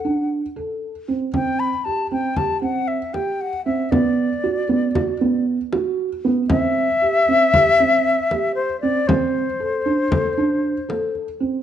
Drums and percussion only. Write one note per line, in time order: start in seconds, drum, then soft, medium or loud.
1.34 frame drum soft
2.11 frame drum soft
2.36 frame drum soft
2.63 frame drum soft
3.14 frame drum soft
3.92 frame drum medium
4.70 frame drum soft
4.95 frame drum medium
5.21 frame drum soft
5.73 frame drum soft
6.50 frame drum medium
7.27 frame drum soft
7.54 frame drum medium
7.79 frame drum soft
8.31 frame drum soft
9.09 frame drum medium
9.86 frame drum soft
10.12 frame drum medium
10.90 frame drum soft
11.15 frame drum soft